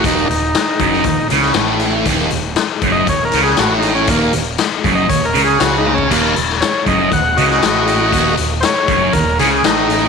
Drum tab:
CC |----------------|----------------|----------------|x---------------|
HH |x-x-x-x-x-x-x-x-|x-x-x-x-x-x-x-x-|x-x-x-x-x-x-x---|x-x-x-x-x-x-x-x-|
SD |----o--o--ooo---|-o--o-----ooo---|----o-------o---|---oo------oo---|
T1 |----------------|----------------|--------------o-|----------------|
BD |o-----o-o-------|o-----o-o-------|o-----o-o------o|o-----o-o-------|

CC |----------------|
HH |x-x-x-x-x-x-x-x-|
SD |----o-----o-o---|
T1 |----------------|
BD |o-----o-o-------|